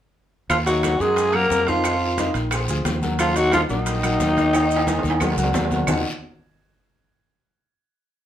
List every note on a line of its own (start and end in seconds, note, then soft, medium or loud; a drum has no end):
0.50 0.97 D#2 medium
0.50 0.57 F3 medium
0.50 0.58 F4 medium
0.50 high bongo medium
0.50 high timbale medium
0.50 long guiro medium
0.50 claves medium
0.50 maracas medium
0.66 0.94 D#3 medium
0.66 1.02 F#3 medium
0.66 0.94 D#4 medium
0.66 1.02 F#4 medium
0.66 0.95 D#5 medium
0.66 high timbale medium
0.66 maracas medium
0.83 high bongo medium
0.83 high conga medium
0.83 high timbale medium
0.83 short guiro medium
0.83 claves medium
0.83 maracas medium
1.00 1.47 F#2 medium
1.00 1.28 F#3 medium
1.00 1.35 G#3 medium
1.00 1.29 F#4 medium
1.00 1.37 G#4 loud
1.00 1.29 A#4 medium
1.00 high conga soft
1.00 short guiro medium
1.00 maracas soft
1.16 high bongo medium
1.16 high conga soft
1.16 high timbale medium
1.16 long guiro medium
1.16 maracas medium
1.33 1.62 F#3 medium
1.33 1.69 A#3 medium
1.33 1.62 F#4 medium
1.33 1.62 A#4 medium
1.33 1.70 A#4 loud
1.33 high conga soft
1.33 high timbale medium
1.33 claves medium
1.50 2.29 F2 medium
1.50 high bongo medium
1.50 low bongo medium
1.50 high conga soft
1.50 short guiro medium
1.50 maracas medium
1.67 1.82 D#3 medium
1.67 2.35 F3 medium
1.67 1.82 D#4 medium
1.67 2.36 F4 medium
1.67 1.82 D#5 medium
1.67 high conga medium
1.67 high timbale medium
1.67 short guiro medium
1.67 maracas soft
1.84 2.12 D#3 medium
1.84 2.12 D#4 medium
1.84 2.12 D#5 medium
1.84 high bongo medium
1.84 high conga soft
1.84 high timbale medium
1.84 long guiro medium
1.84 claves medium
1.84 maracas medium
2.01 high bongo soft
2.01 high conga soft
2.18 2.46 D#3 medium
2.18 2.46 D#4 medium
2.18 2.46 D#5 medium
2.18 high bongo medium
2.18 high conga medium
2.18 high timbale medium
2.18 short guiro medium
2.18 maracas medium
2.34 2.66 A#1 medium
2.34 high conga soft
2.34 high timbale medium
2.34 short guiro medium
2.34 maracas soft
2.51 2.66 F3 medium
2.51 2.66 F4 medium
2.51 2.66 G#4 medium
2.51 high bongo medium
2.51 high conga soft
2.51 high timbale medium
2.51 long guiro medium
2.51 claves medium
2.51 maracas medium
2.68 2.84 D2 medium
2.68 2.97 F3 medium
2.68 2.97 F4 medium
2.68 2.97 G#4 medium
2.68 high bongo soft
2.68 high conga soft
2.68 maracas medium
2.85 3.64 D#2 medium
2.85 high bongo medium
2.85 low bongo medium
2.85 high conga medium
2.85 high timbale medium
2.85 short guiro medium
2.85 maracas medium
3.02 3.30 F#3 medium
3.02 3.30 F#4 medium
3.02 3.30 A#4 medium
3.02 high bongo soft
3.02 high conga medium
3.02 short guiro medium
3.02 maracas soft
3.19 3.37 F3 medium
3.19 3.39 F4 loud
3.19 high bongo medium
3.19 high conga soft
3.19 high timbale medium
3.19 long guiro medium
3.19 claves medium
3.19 maracas medium
3.35 3.63 D#3 medium
3.35 3.52 F#3 medium
3.35 3.63 D#4 medium
3.35 3.53 F#4 loud
3.35 3.63 D#5 medium
3.35 high timbale medium
3.35 maracas medium
3.52 3.61 F3 medium
3.52 3.61 F4 loud
3.52 high bongo medium
3.52 high conga medium
3.52 high timbale medium
3.52 short guiro medium
3.52 claves medium
3.52 maracas medium
3.69 4.17 A#1 medium
3.69 5.50 D#3 medium
3.69 3.97 F#3 medium
3.69 5.50 D#4 loud
3.69 3.97 F#4 medium
3.69 3.97 A#4 medium
3.69 high conga soft
3.69 short guiro medium
3.69 maracas soft
3.86 high bongo medium
3.86 high conga soft
3.86 high timbale medium
3.86 long guiro medium
3.86 maracas medium
4.03 4.31 F#3 medium
4.03 4.31 F#4 medium
4.03 4.31 A#4 medium
4.03 high timbale medium
4.03 claves medium
4.03 maracas medium
4.20 4.98 D#2 medium
4.20 high bongo medium
4.20 low bongo medium
4.20 short guiro medium
4.20 maracas medium
4.37 4.51 D#3 medium
4.37 4.51 D#4 medium
4.37 4.51 D#5 medium
4.37 high conga medium
4.37 high timbale medium
4.37 short guiro medium
4.37 maracas soft
4.53 4.81 D#3 medium
4.53 4.81 D#4 medium
4.53 high bongo medium
4.53 high timbale medium
4.53 long guiro medium
4.53 claves medium
4.53 maracas medium
4.71 high bongo soft
4.71 high conga soft
4.71 maracas medium
4.76 high timbale loud
4.87 5.15 D#3 medium
4.87 5.15 D#4 medium
4.87 5.15 D#5 medium
4.87 high bongo medium
4.87 high conga medium
4.87 high timbale medium
4.87 short guiro medium
4.87 maracas medium
4.99 low timbale medium
5.03 5.35 D#2 medium
5.03 high conga medium
5.03 short guiro medium
5.03 maracas soft
5.10 high timbale loud
5.20 5.34 F#3 medium
5.20 5.34 F#4 medium
5.20 5.35 A#4 medium
5.20 high bongo medium
5.20 high conga medium
5.20 low timbale loud
5.20 long guiro medium
5.20 claves medium
5.20 maracas medium
5.32 low timbale medium
5.37 5.53 C#2 medium
5.37 5.65 F#3 medium
5.37 5.65 F#4 medium
5.37 5.65 A#4 medium
5.37 high bongo soft
5.37 high conga medium
5.37 maracas medium
5.44 low timbale medium
5.53 5.83 D#2 medium
5.53 high bongo medium
5.53 low bongo medium
5.53 low conga medium
5.53 low timbale medium
5.53 short guiro medium
5.53 maracas medium
5.65 low timbale loud
5.70 5.85 F#3 medium
5.70 5.85 F#4 medium
5.70 5.85 A#4 medium
5.70 high bongo soft
5.70 low conga medium
5.70 short guiro medium
5.70 maracas soft
5.76 low timbale medium
5.87 6.03 D#2 medium
5.87 6.03 D#3 medium
5.87 6.03 A#3 medium
5.87 6.03 C#4 medium
5.87 6.03 D#4 medium
5.87 6.04 F4 medium
5.87 6.04 F#4 medium
5.87 low bongo loud
5.87 low conga medium
5.87 low timbale medium
5.87 long guiro loud
5.87 claves medium
5.87 maracas medium